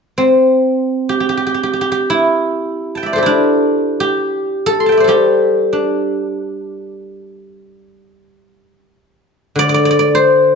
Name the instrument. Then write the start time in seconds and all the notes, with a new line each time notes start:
guzheng
0.18 C4
1.09 G4
1.20 G4
1.29 G4
1.37 G4
1.47 G4
1.54 G4
1.63 G4
1.73 G4
1.81 G4
1.92 G4
2.10 E4
2.95 G5 A5
3.03 D5 E5
3.13 A4 C5
3.18 G4
3.23 D4 E4
4.00 G4
4.66 A4
4.80 C6
4.86 G5 A5
4.92 E5
4.97 C5 D5
5.04 G3 A4
5.09 G4
5.73 D4
9.56 D3 D5
9.69 D5
9.74 D5
9.85 D5
9.91 D5
9.99 D5
10.15 C5